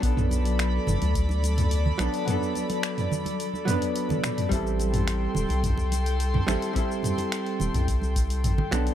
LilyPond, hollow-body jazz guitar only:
\new Staff \with { instrumentName = "Hollow-body jazz guitar" } { \time 4/4 \key a \dorian \tempo 4 = 107 <fis b d' a'>2.~ <fis b d' a'>8 <fis b d' a'>8 | <fis b d' a'>2~ <fis b d' a'>8 <fis b d' b'>4. | <g c' e' a'>2.~ <g c' e' a'>8 <g c' e' a'>8 | <g c' e' a'>2.~ <g c' e' a'>8 <fis b d' a'>8 | }